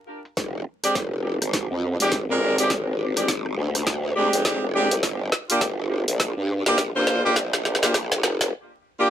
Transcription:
0.25 closed hi-hat
0.37 F1, kick, snare, closed hi-hat
0.84 G#3 C4 D4 G4, cross-stick, closed hi-hat
0.95 F1, kick, snare, closed hi-hat
1.42 G#1, cross-stick, closed hi-hat
1.53 kick, snare, closed hi-hat
1.71 F2
2.00 F1 G#3 C4 D4 G4, closed hi-hat
2.12 G#1, kick, snare, closed hi-hat
2.29 F2 G#3 C4 D4 A#4
2.41 G#1
2.58 G#3 C4 D4 G4, closed hi-hat
2.70 G#1, kick, snare, closed hi-hat
3.17 G#3 C4 D4 G4, cross-stick, closed hi-hat
3.28 kick, snare, closed hi-hat
3.46 cross-stick
3.57 D2
3.75 cross-stick, closed hi-hat
3.87 kick, snare, closed hi-hat
4.16 D2 G#3 C4 D4 G4
4.33 F1, closed hi-hat
4.45 G#1 G#3 C4 D4 G4, kick, snare, closed hi-hat
4.62 F1
4.74 G#3 C4 D4 G4
4.91 C2, closed hi-hat
5.03 G1, kick, snare, closed hi-hat
5.32 snare
5.50 A#3 D4 F4 G4, closed hi-hat
5.61 G1, kick, snare, closed hi-hat
6.08 A#1, closed hi-hat
6.20 kick, snare, closed hi-hat
6.37 G2
6.66 G1 A#3 D4 F4 G4, snare, closed hi-hat
6.78 A#1, kick, snare, closed hi-hat
6.95 G2 A#3 D4 F4 C5
7.07 A#1, snare
7.24 A#3 D4 F4 G4
7.36 A#1, kick, snare, closed hi-hat
7.53 snare
7.65 snare
7.75 snare
7.83 A#3 D4 F4 G4, snare, closed hi-hat
7.85 snare
7.94 kick, snare, closed hi-hat
8.12 snare
8.23 F1, snare
8.41 snare, closed hi-hat
8.99 A#3 D4 F4 G4

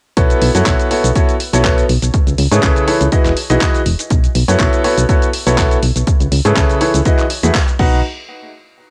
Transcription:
0.17 B1 B3 E4 F#4 A4 B4 C#5, kick, closed hi-hat, shaker
0.30 closed hi-hat, shaker
0.42 B1, open hi-hat
0.55 F#2 B3 E4 F#4 A4 B4 C#5, closed hi-hat, shaker
0.66 B1 B3 E4 F#4 A4 B4 C#5, kick, clap, closed hi-hat, shaker
0.80 closed hi-hat, shaker
0.91 B3 E4 F#4 A4 B4 C#5, open hi-hat
1.04 B1, closed hi-hat, shaker
1.15 B3 E4 F#4 A4 B4 C#5, kick, closed hi-hat, shaker
1.29 closed hi-hat, shaker
1.40 open hi-hat
1.53 B1 B3 E4 F#4 A4 B4 C#5, closed hi-hat, shaker
1.65 B3 E4 F#4 A4 B4 C#5, kick, clap, closed hi-hat, shaker
1.78 closed hi-hat, shaker
1.89 B1, open hi-hat
2.02 B1, closed hi-hat, shaker
2.14 kick, closed hi-hat, shaker
2.27 C#2, closed hi-hat, shaker
2.38 C#2, open hi-hat
2.51 G#2 C#3 E4 G#4 A4 B4 C#5, closed hi-hat, shaker
2.63 C#2 C#3 E4 G#4 A4 B4 C#5, kick, clap, closed hi-hat, shaker
2.76 closed hi-hat, shaker
2.88 E3 E4 G#4 A4 B4 C#5, open hi-hat
3.01 C#2, closed hi-hat, shaker
3.12 E3 E4 F#4 G#4 B4 D#5, kick, closed hi-hat, shaker
3.25 E1, clap, closed hi-hat, shaker
3.37 open hi-hat
3.50 B1 E3 E4 F#4 G#4 B4 D#5, closed hi-hat, shaker
3.61 E3 E4 F#4 G#4 B4 D#5, kick, clap, closed hi-hat, shaker
3.74 closed hi-hat, shaker
3.86 E1, open hi-hat
3.99 closed hi-hat, shaker
4.10 B1, kick, closed hi-hat, shaker
4.24 closed hi-hat, shaker
4.35 B1, open hi-hat
4.48 F#2 B3 E4 F#4 A4 B4 C#5, closed hi-hat, shaker
4.60 B1 B3 E4 F#4 A4 B4 C#5, kick, clap, closed hi-hat, shaker
4.73 closed hi-hat, shaker
4.84 B3 E4 F#4 A4 B4 C#5, open hi-hat
4.98 B1, closed hi-hat, shaker
5.09 B3 E4 F#4 A4 B4 C#5, kick, closed hi-hat, shaker
5.22 closed hi-hat, shaker
5.33 open hi-hat
5.47 B1 B3 E4 F#4 A4 B4 C#5, closed hi-hat, shaker
5.58 B3 E4 F#4 A4 B4 C#5, kick, clap, closed hi-hat, shaker
5.71 closed hi-hat, shaker
5.83 B1, open hi-hat
5.96 B1, closed hi-hat, shaker
6.07 kick, closed hi-hat, shaker
6.20 C#2, closed hi-hat, shaker
6.32 C#2, open hi-hat
6.45 G#2 C#3 E4 G#4 A4 B4 C#5, closed hi-hat, shaker
6.56 C#2 C#3 E4 G#4 A4 B4 C#5, kick, clap, closed hi-hat, shaker
6.70 closed hi-hat, shaker
6.81 E3 E4 G#4 A4 B4 C#5, open hi-hat
6.94 C#2, closed hi-hat, shaker
7.05 E3 E4 F#4 G#4 B4 D#5, kick, closed hi-hat, shaker
7.19 clap, closed hi-hat, shaker
7.30 open hi-hat
7.43 E2 A3 E4 F#4 G#4 B4 E5, closed hi-hat, shaker
7.55 kick, clap, closed hi-hat, shaker
7.68 closed hi-hat, shaker
7.79 B1 D#4 F#4 B4 D#5 F#5, kick, crash

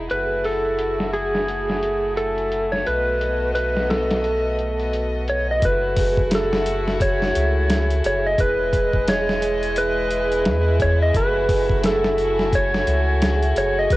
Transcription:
Already playing: E4
0.10 F#1 A3 F#4 G#4 B4, closed hi-hat
0.45 F#4 A4, open hi-hat
0.79 A4, closed hi-hat
1.00 snare
1.14 G#4, closed hi-hat
1.35 snare
1.48 F#4, closed hi-hat
1.70 snare
1.83 A4, closed hi-hat
2.17 A4 G#5, closed hi-hat
2.38 closed hi-hat
2.52 F#4, closed hi-hat
2.72 C#5, snare
2.87 B1 B3 F#4 B4 D#5, closed hi-hat
3.21 A4, closed hi-hat
3.55 F#4 B4, closed hi-hat
3.77 snare
3.90 A4 B4, snare, closed hi-hat
4.11 snare, closed hi-hat
4.24 A4, closed hi-hat
4.59 F#4, closed hi-hat
4.80 closed hi-hat
4.93 B4, closed hi-hat
5.28 A4 C#5, closed hi-hat
5.51 D#5
5.62 F#1 A3 E4 F#4 A4 B4 G#5, kick, closed hi-hat
5.96 G#4, kick, open hi-hat
6.17 kick
6.31 F#4 A4, snare, closed hi-hat
6.53 snare
6.66 A4, closed hi-hat
6.88 snare
7.00 G#4 C#5, kick, closed hi-hat
7.22 snare
7.35 C#2 F#4, closed hi-hat
7.69 A4, snare, closed hi-hat
7.90 closed hi-hat
8.04 F#1 G#4 C#5, closed hi-hat
8.27 D#5
8.38 E1 G#3 E4 B4 D#5, kick, closed hi-hat
8.73 B4, kick, closed hi-hat
8.93 kick
9.07 G#4 C#5, snare, closed hi-hat
9.29 snare
9.42 E4, closed hi-hat
9.63 closed hi-hat
9.76 B4, closed hi-hat
10.11 G#4, closed hi-hat
10.32 closed hi-hat
10.46 E2, snare, closed hi-hat
10.80 B4 C#5, kick, closed hi-hat
11.03 D#5
11.14 F#1 A3 F#4 G#4 B4, kick, closed hi-hat
11.49 F#4, kick, open hi-hat
11.70 kick
11.84 A4, snare, closed hi-hat
12.05 snare
12.18 G#5, closed hi-hat
12.39 snare
12.53 F#4 C#5, kick, closed hi-hat
12.74 snare
12.87 C#2 A4, closed hi-hat
13.22 G#4, snare, closed hi-hat
13.42 closed hi-hat
13.56 F#1 F#4 C#5, closed hi-hat
13.79 D#5
13.90 B1 B3 A4 B4 D#5, kick, closed hi-hat

